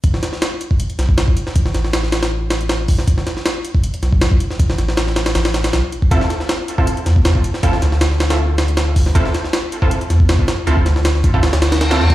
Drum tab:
HH |x-x-x-x-xxx-x-x-|x-x-x-xx--xxx-o-|x-x-x-x-xxx-x-x-|x-x-x-xxxxxxx-x-|
SD |-oooo-----o-o--o|-ooooooo--o-o--o|-oooo-----o-o--o|-oooooooooooo---|
BD |o------o---o-o--|o-------------o-|o------o---o-o--|o--------------o|

HH |x-x-x-x-xxx-x-x-|x-x-x-xx--xxx-o-|x-x-x-x-xxx-x-x-|x-x-x-x-xxxxxx-x|
SD |-oooo-----o-o--o|-ooooooo--o-o--o|-oooo-----o-o-o-|--oooo--ooooooo-|
BD |o------o---o-o--|o-------------o-|o------o---o-o--|-o----oo-------o|